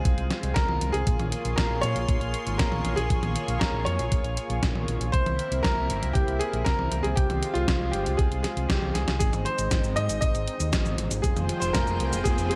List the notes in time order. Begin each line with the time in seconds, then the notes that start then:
Already playing: G#3 C4 F4 G#4
0.05 C2, kick, closed hi-hat
0.18 C2, closed hi-hat
0.30 snare, closed hi-hat
0.43 C2, closed hi-hat
0.54 C2 A#4, kick, snare, closed hi-hat
0.69 C2, high tom
0.81 C2, closed hi-hat
0.92 C2 G#4, closed hi-hat
1.07 A#1 A#3 G#4 C#5 C6, kick, closed hi-hat
1.19 A#1, closed hi-hat, high tom
1.32 closed hi-hat
1.45 A#1, closed hi-hat
1.56 A#1 A#4, kick, snare, closed hi-hat
1.71 A#1
1.81 A#2 C#5, closed hi-hat
1.96 A#1, closed hi-hat
2.09 A#1, kick, closed hi-hat
2.21 A#1, closed hi-hat
2.34 closed hi-hat
2.47 G#1, closed hi-hat
2.58 A#1 A#4, kick, snare, closed hi-hat
2.72 A#1, high tom
2.85 A#1, closed hi-hat, high tom
2.96 A#1 G#4, closed hi-hat
3.10 A#1, kick, closed hi-hat
3.23 A#1, closed hi-hat, high tom
3.36 closed hi-hat
3.48 A#1, closed hi-hat
3.59 A#1 A#4, kick, snare, closed hi-hat
3.74 A#1
3.85 F2 C#5, closed hi-hat
3.99 A#1, closed hi-hat
4.12 A#1, kick, closed hi-hat
4.24 A#1, closed hi-hat
4.37 closed hi-hat
4.50 A#1, closed hi-hat
4.63 A#1, kick, snare, closed hi-hat
4.75 A#1, high tom
4.88 A#1, closed hi-hat
5.01 A#1, closed hi-hat
5.12 C2 A#3 C4 E4 C5, kick, closed hi-hat
5.26 C2, closed hi-hat, high tom
5.39 closed hi-hat
5.52 C2, closed hi-hat
5.63 C2 A#4, kick, snare, closed hi-hat
5.77 C2
5.90 G1, closed hi-hat
6.03 C2, closed hi-hat
6.13 C2 G4, kick, closed hi-hat
6.28 C2, closed hi-hat
6.39 G#4, closed hi-hat
6.53 A#1, closed hi-hat
6.65 C2 A#4, kick, snare, closed hi-hat
6.79 C2, high tom
6.91 C2, closed hi-hat, high tom
7.03 C2 G#4, closed hi-hat
7.16 C2 G#3 F4 G4, kick, closed hi-hat
7.30 C2, closed hi-hat, high tom
7.43 closed hi-hat
7.54 C2 F4, closed hi-hat
7.68 C2, kick, snare, closed hi-hat
7.81 C2
7.92 G1 G4, closed hi-hat
8.06 C2, closed hi-hat
8.17 C2 G#4, kick, closed hi-hat
8.31 C2, closed hi-hat
8.43 G#4, snare, closed hi-hat
8.57 C2, closed hi-hat
8.69 C2 G4, kick, snare, closed hi-hat
8.82 C2, high tom
8.94 C2 G#4, snare, closed hi-hat
9.08 C2, snare, closed hi-hat
9.19 G#1 G#3 C4 D#4 G#4, kick, closed hi-hat, riser, cabasa
9.33 G#1, closed hi-hat, high tom, cabasa
9.45 C5, closed hi-hat
9.58 G#1, closed hi-hat, cabasa
9.71 G#1, kick, snare, closed hi-hat, cabasa
9.84 G#1, cabasa
9.96 G#2 D#5, closed hi-hat
10.09 G#1, closed hi-hat, cabasa
10.21 G#1 D#5, kick, closed hi-hat, cabasa
10.35 G#1, closed hi-hat, cabasa
10.48 closed hi-hat
10.60 D#2, closed hi-hat, cabasa
10.73 G#1, kick, snare, closed hi-hat, cabasa
10.86 G#1, high tom, cabasa
10.98 G#1, closed hi-hat, high tom
11.11 G#1, closed hi-hat, cabasa
11.22 F1 F3 F4 G#4 C5 G5, kick, closed hi-hat, cabasa
11.37 F1, closed hi-hat, high tom, cabasa
11.49 closed hi-hat
11.60 F1 C5, closed hi-hat, cabasa
11.73 F1 A#4, kick, snare, closed hi-hat, cabasa
11.87 F1, cabasa
12.00 C2, closed hi-hat
12.13 F1, closed hi-hat, cabasa
12.24 F1 G#4, kick, closed hi-hat, cabasa
12.38 F1, closed hi-hat, cabasa
12.49 G#4, closed hi-hat